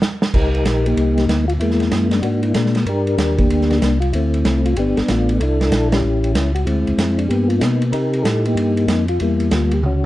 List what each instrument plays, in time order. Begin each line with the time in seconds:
0.02 snare, hi-hat pedal
0.22 snare
0.34 tonewheel organ C2 D#4 G4 A#4, kick, crash
0.55 ride
0.64 tonewheel organ A#1, snare, hi-hat pedal, ride
0.86 tonewheel organ A#3 D#4 G4, ride
0.96 tonewheel organ C2, ride
1.18 snare, ride
1.27 tonewheel organ D2, snare, hi-hat pedal, ride
1.48 tonewheel organ F4, ride
1.59 tonewheel organ E2 G#3 A#3 E4, ride
1.71 snare
1.80 snare, ride
1.91 tonewheel organ F#2, snare, hi-hat pedal, ride
2.11 tonewheel organ D4, snare, ride
2.22 tonewheel organ G#2 A#3 D4 F#4, ride
2.43 tonewheel organ E4, ride
2.54 tonewheel organ A#2 G#3 A#3 D4, snare, hi-hat pedal, ride
2.66 snare
2.75 snare, ride
2.85 tonewheel organ G2 D4 G4 A#4, ride
3.07 ride
3.17 tonewheel organ D#2, snare, hi-hat pedal, ride
3.38 tonewheel organ A#3 D4 G4, kick, ride
3.49 tonewheel organ D2, ride
3.61 snare
3.70 snare, ride
3.81 tonewheel organ C2, snare, hi-hat pedal, ride
4.00 tonewheel organ F4, ride
4.13 tonewheel organ D2 A3 C4 E4, ride
4.34 ride
4.44 tonewheel organ C2, snare, hi-hat pedal, ride
4.66 tonewheel organ F4, ride
4.76 tonewheel organ G1 B3 D4 G4, ride
4.96 tonewheel organ G1 A4, snare, ride
5.08 tonewheel organ A1 A3 B3 F4, snare, hi-hat pedal, ride
5.29 ride
5.40 tonewheel organ C2 D4 E4 A4, ride
5.61 snare, ride
5.70 tonewheel organ A#1, snare, hi-hat pedal, ride
5.92 tonewheel organ C#4 E4 G4, snare, ride
6.03 tonewheel organ A1
6.24 ride
6.34 tonewheel organ C#2, snare, hi-hat pedal, ride
6.55 tonewheel organ F#4, ride
6.65 tonewheel organ D2 G#3 C4 E4, ride
6.87 tonewheel organ D2, ride
6.97 tonewheel organ F2, snare, hi-hat pedal, ride
7.18 tonewheel organ D4, ride
7.28 tonewheel organ G2 A#3 B3 G4, ride
7.48 tonewheel organ F4, ride
7.59 tonewheel organ B2 A#3 B3 D#4, snare, hi-hat pedal, ride
7.82 ride
7.92 tonewheel organ C3 D#4 G4 A#4, ride
8.13 ride
8.23 tonewheel organ A2 A4, snare, hi-hat pedal, ride
8.45 tonewheel organ A#3 D#4 G4, ride
8.55 tonewheel organ G2, ride
8.77 ride
8.88 tonewheel organ F2, snare, hi-hat pedal, ride
9.08 tonewheel organ F4, ride
9.20 tonewheel organ E2 G3 A#3 E4, ride
9.40 ride
9.51 tonewheel organ D2 F4, snare, hi-hat pedal, ride
9.71 tonewheel organ G4, ride
9.82 tonewheel organ C#2 C#4 F#4, mid tom